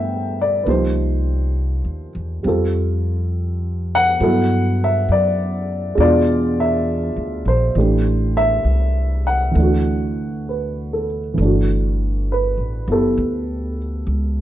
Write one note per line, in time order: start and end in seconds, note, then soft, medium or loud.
0.00 0.62 G2 medium
0.00 0.65 E3 soft
0.00 0.66 A3 soft
0.00 0.67 B3 soft
0.00 0.67 D4 soft
0.00 0.68 E4 soft
0.00 0.66 G4 soft
0.00 0.35 E5 medium
0.00 0.68 F#5 medium
0.00 0.69 G5 medium
0.00 0.68 A5 medium
0.42 0.64 D5 medium
0.63 1.81 C2 medium
0.63 2.44 F3 soft
0.63 2.44 A#3 soft
0.63 0.67 B4 soft
0.68 2.44 D#4 soft
0.68 2.44 G4 soft
0.68 2.13 C5 medium
1.85 2.12 D#2 soft
2.15 2.42 E2 medium
2.43 4.17 F2 medium
2.43 4.20 G3 soft
2.43 4.21 C4 soft
2.43 4.22 F4 soft
2.47 4.21 A4 medium
3.95 4.85 F#5 medium
4.20 5.05 G2 medium
4.20 5.98 F#3 medium
4.20 5.98 B3 soft
4.20 5.98 E4 soft
4.20 5.99 A4 soft
4.84 5.09 E5 medium
5.09 5.94 F#2 medium
5.09 5.99 D5 medium
5.95 7.12 E2 medium
5.95 7.75 B2 soft
5.95 7.74 G#3 medium
5.99 7.76 D4 soft
5.99 7.77 F4 medium
5.99 6.61 D5 medium
6.60 7.44 E5 medium
7.16 7.44 D2 soft
7.45 7.73 A#1 medium
7.45 8.33 C5 medium
7.75 8.61 A1 medium
7.75 9.50 E3 soft
7.75 9.53 A3 soft
7.75 9.56 D4 soft
7.75 9.56 G4 soft
8.37 9.22 E5 medium
8.64 9.51 C2 medium
9.27 11.05 F#5 medium
9.51 11.32 E3 soft
9.51 11.36 A3 soft
9.55 11.34 D2 medium
9.55 11.40 D4 soft
9.62 11.41 F#4 soft
10.49 11.21 B4 soft
10.93 11.57 A4 soft
11.34 14.41 E3 soft
11.34 14.41 A3 soft
11.38 12.54 G1 medium
11.38 14.41 D4 soft
11.45 14.41 F#4 soft
12.32 12.86 B4 medium
12.57 12.85 A1 soft
12.88 13.16 F#1 medium
12.88 14.41 B3 soft
12.88 14.41 E4 soft
12.88 14.41 G4 soft
12.92 13.76 A4 medium
13.18 14.04 D2 medium
14.07 14.41 C#2 medium